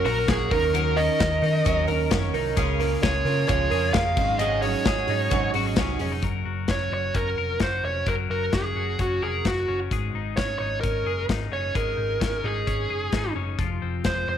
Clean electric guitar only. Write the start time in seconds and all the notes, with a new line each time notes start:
Already playing: F#2 F#3 A#3 C#4
0.05 F#4
0.27 A#3
0.51 D#3
0.74 D#3 A#4
0.97 C#4
1.19 A#4
1.42 D#4
1.66 F#3
1.88 A#4
2.11 C#4
2.34 D#4
2.57 C#3 G#4
2.79 A#3
3.04 G#4
3.26 F4
3.49 F3
3.71 G#4
3.95 A#3
4.18 G#2
4.41 G#2 G#4
4.64 C#4
4.87 G#4
5.10 D#4
5.32 F#3
5.55 F#4
5.67 G#4
5.78 C#4
6.01 C#4
6.12 D#4
6.23 F#3 A#4
6.45 F#4
6.68 C#4
6.92 F#4
7.15 C#4
7.38 A#4
7.61 F#4
7.85 C#4
8.07 F#3 A#4
8.30 F#4
8.53 C#4
8.76 F#4
8.99 C#4
9.22 A#4
9.45 F#4
9.68 C#4
9.92 G#2 G#4
10.15 D#4
10.38 C#4
10.60 D#4
10.83 C#4
11.07 G#4
11.29 D#4
11.52 C#4
11.75 G#2 G#4
11.97 D#4
12.20 C#4
12.44 D#4
12.67 C#4
12.90 G#4
13.14 D#4
13.36 C#4
13.59 F3 F4
13.82 C4
14.05 G#3
14.28 C4